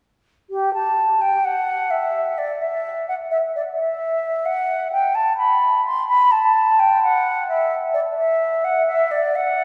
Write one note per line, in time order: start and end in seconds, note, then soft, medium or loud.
0.50 0.73 G4 medium
0.74 1.23 A5 medium
1.21 1.46 G5 medium
1.44 1.92 F#5 medium
1.90 2.39 E5 medium
2.38 2.63 D5 medium
2.61 3.08 E5 medium
3.08 3.14 F#5 medium
3.31 3.37 E5 medium
3.55 3.61 D5 medium
3.76 4.47 E5 medium
4.45 4.92 F#5 medium
4.92 5.16 G5 medium
5.15 5.37 A5 medium
5.37 5.84 B5 medium
5.85 6.08 C6 medium
6.08 6.33 B5 medium
6.31 6.81 A5 medium
6.79 7.02 G5 medium
7.03 7.47 F#5 medium
7.48 7.73 E5 medium
7.93 7.99 D5 medium
8.17 8.66 E5 medium
8.64 8.86 F#5 medium
8.86 9.12 E5 medium
9.11 9.37 D5 medium
9.35 9.64 F#5 medium